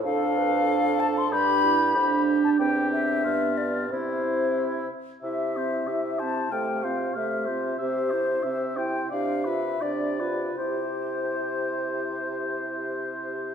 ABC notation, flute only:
X:1
M:2/4
L:1/16
Q:1/4=92
K:C
V:1 name="Flute"
f6 a c' | b6- b a | g2 e4 d2 | c6 z2 |
e6 a2 | g2 f2 e4 | c6 g2 | f2 e2 d4 |
c8- | c8 |]